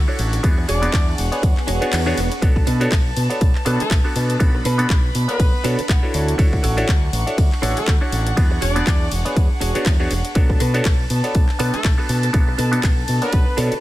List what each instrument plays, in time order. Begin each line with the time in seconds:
Already playing: violin section D4 F#5 C#6
0.08 clav D4 E4 F#4 A4 C#5, clean electric guitar D4 F#4 A4 C#5
0.19 fingered electric bass A1, open hi-hat
0.33 muted clean electric guitar stroke, closed hi-hat
0.43 fingered electric bass E2, clav B3 D4 F#4 G#4 C#5, violin section G#4 F#5, kick, closed hi-hat, ride
0.58 muted clean electric guitar stroke
0.68 fingered electric bass E1, clean electric guitar D4 F#4 G#4 C#5, horn section D4 D5, open hi-hat
0.82 clav B3 D4 F#4 G#4 C#5, closed hi-hat
0.93 fingered electric bass E2, kick, clap, closed hi-hat, ride
1.18 fingered electric bass E1, open hi-hat
1.32 clav B3 D4 F#4 G#4 C#5, closed hi-hat
1.43 fingered electric bass E2, muted clean electric guitar stroke, kick, closed hi-hat, ride, swell
1.57 clap
1.67 fingered electric bass E1, clean electric guitar D4 F#4 G#4 C#5, open hi-hat
1.81 clav B3 D4 F#4 G#4 C#5, muted fingered electric bass stroke, closed hi-hat
1.93 fingered electric bass E2, clap, closed hi-hat, ride
2.06 clav B3 D4 F#4 G#4 C#5, clean electric guitar D4 F#4 G#4 C#5
2.18 fingered electric bass E1, open hi-hat
2.31 muted clean electric guitar stroke, closed hi-hat
2.42 fingered electric bass B1, clav B3 D4 F#4 A4 C#5, violin section D4 B4 A5, kick, closed hi-hat, ride
2.56 muted clean electric guitar stroke, kick
2.67 fingered electric bass B2, clean electric guitar D4 F#4 A4 B4, open hi-hat
2.80 clav B3 D4 F#4 A4 C#5, closed hi-hat
2.92 fingered electric bass B1, kick, clap, closed hi-hat, ride
3.17 fingered electric bass B2, open hi-hat
3.30 clav B3 D4 F#4 A4 C#5, closed hi-hat
3.41 fingered electric bass B1, muted clean electric guitar stroke, kick, closed hi-hat, ride
3.55 clap
3.65 fingered electric bass B2, clav B3 D4 F#4 A4 C#5, clean electric guitar D4 F#4 A4 B4, open hi-hat
3.80 horn section A3 A4, muted fingered electric bass stroke, closed hi-hat
3.91 fingered electric bass B1, kick, clap, closed hi-hat, ride
4.04 clav B3 D4 F#4 A4 C#5, clean electric guitar D4 F#4 A4 B4
4.16 fingered electric bass B2, open hi-hat
4.30 muted clean electric guitar stroke, closed hi-hat
4.39 fingered electric bass B1, clav B3 D4 F#4 A4 C#5, violin section B5, kick, closed hi-hat, ride
4.55 muted clean electric guitar stroke
4.65 fingered electric bass B2, clean electric guitar D4 F#4 A4 B4, open hi-hat
4.78 clav B3 D4 F#4 A4 C#5, closed hi-hat
4.90 fingered electric bass B1, kick, clap, closed hi-hat, ride
5.15 fingered electric bass B2, open hi-hat
5.28 clav B3 D4 F#4 A4 C#5, horn section B3 B4, closed hi-hat
5.39 fingered electric bass B1, muted clean electric guitar stroke, kick, closed hi-hat, ride
5.54 muted fingered electric bass stroke
5.64 fingered electric bass B2, clav B3 D4 F#4 A4 C#5, clean electric guitar D4 F#4 A4 B4, open hi-hat
5.79 muted fingered electric bass stroke, closed hi-hat
5.89 fingered electric bass B1, clean electric guitar F#5, kick, clap, closed hi-hat, ride
6.02 clav D4 E4 F#4 A4 C#5, clean electric guitar D4 F#4 A4 B4
6.14 fingered electric bass D2, clean electric guitar D4 F#4 A4 C#5 D5, violin section F#5 C#6, open hi-hat
6.28 closed hi-hat
6.38 fingered electric bass D2, clav D4 E4 F#4 A4 C#5, kick, closed hi-hat, ride
6.52 muted clean electric guitar stroke, kick
6.63 fingered electric bass A1, clean electric guitar D4 F#4 A4 C#5, open hi-hat
6.77 clav D4 E4 F#4 A4 C#5, closed hi-hat
6.88 fingered electric bass D2, kick, clap, closed hi-hat, ride
7.13 fingered electric bass A1, open hi-hat
7.27 clav D4 E4 F#4 A4 C#5, closed hi-hat
7.38 fingered electric bass D2, muted clean electric guitar stroke, kick, closed hi-hat, ride
7.52 clap
7.62 fingered electric bass A1, clean electric guitar D4 F#4 A4 C#5, clav D4 E4 F#4 A4 C#5, open hi-hat
7.77 horn section A3 A4, closed hi-hat
7.88 fingered electric bass D2, kick, clap, closed hi-hat, ride
8.01 clav D4 E4 F#4 A4 C#5, clean electric guitar D4 F#4 A4 C#5
8.12 fingered electric bass A1, open hi-hat
8.26 muted clean electric guitar stroke, closed hi-hat
8.37 fingered electric bass E2, clav B3 D4 F#4 G#4 C#5, violin section G#4, kick, closed hi-hat, ride
8.51 muted clean electric guitar stroke
8.61 fingered electric bass E1, clean electric guitar D4 F#4 G#4 C#5, horn section D4 D5, open hi-hat
8.76 clav B3 D4 F#4 G#4 C#5, closed hi-hat
8.87 fingered electric bass E2, kick, clap, closed hi-hat, ride
9.12 fingered electric bass E1, open hi-hat
9.25 clav B3 D4 F#4 G#4 C#5, closed hi-hat
9.36 fingered electric bass E2, muted clean electric guitar stroke, kick, closed hi-hat, ride
9.50 muted fingered electric bass stroke
9.60 fingered electric bass E1, clean electric guitar D4 F#4 G#4 C#5, open hi-hat
9.75 clav B3 D4 F#4 G#4 C#5, muted fingered electric bass stroke, closed hi-hat
9.86 fingered electric bass E2, kick, clap, closed hi-hat, ride
9.99 clav B3 D4 F#4 G#4 C#5, clean electric guitar D4 F#4 G#4 C#5
10.11 fingered electric bass E1, open hi-hat
10.25 muted clean electric guitar stroke, closed hi-hat
10.35 fingered electric bass B1, clav B3 D4 F#4 A4 C#5, violin section B4 A5, kick, closed hi-hat, ride
10.49 muted clean electric guitar stroke, kick
10.60 fingered electric bass B2, clean electric guitar D4 F#4 A4 B4, open hi-hat
10.74 clav B3 D4 F#4 A4 C#5, closed hi-hat
10.85 fingered electric bass B1, kick, clap, closed hi-hat, ride
11.10 fingered electric bass B2, open hi-hat
11.24 clav B3 D4 F#4 A4 C#5, closed hi-hat
11.35 fingered electric bass B1, muted clean electric guitar stroke, kick, closed hi-hat, ride
11.49 clap
11.59 fingered electric bass B2, clav B3 D4 F#4 A4 C#5, clean electric guitar D4 F#4 A4 B4, open hi-hat
11.74 horn section A3 A4, muted fingered electric bass stroke, closed hi-hat
11.84 fingered electric bass B1, kick, clap, closed hi-hat, ride
11.98 clav B3 D4 F#4 A4 C#5, clean electric guitar D4 F#4 A4 B4
12.09 fingered electric bass B2, open hi-hat
12.23 muted clean electric guitar stroke, closed hi-hat
12.33 fingered electric bass B1, clav B3 D4 F#4 A4 C#5, violin section A4, kick, closed hi-hat, ride
12.48 muted clean electric guitar stroke
12.58 fingered electric bass B2, clean electric guitar D4 F#4 A4 B4, open hi-hat
12.71 clav B3 D4 F#4 A4 C#5, closed hi-hat
12.83 fingered electric bass B1, kick, clap, closed hi-hat, ride
13.08 fingered electric bass B2, open hi-hat
13.22 clav B3 D4 F#4 A4 C#5, horn section B3 B4, closed hi-hat
13.33 fingered electric bass B1, muted clean electric guitar stroke, kick, closed hi-hat, ride
13.47 muted fingered electric bass stroke
13.57 fingered electric bass B2, clav B3 D4 F#4 A4 C#5, clean electric guitar D4 F#4 A4 B4, open hi-hat
13.72 muted fingered electric bass stroke, closed hi-hat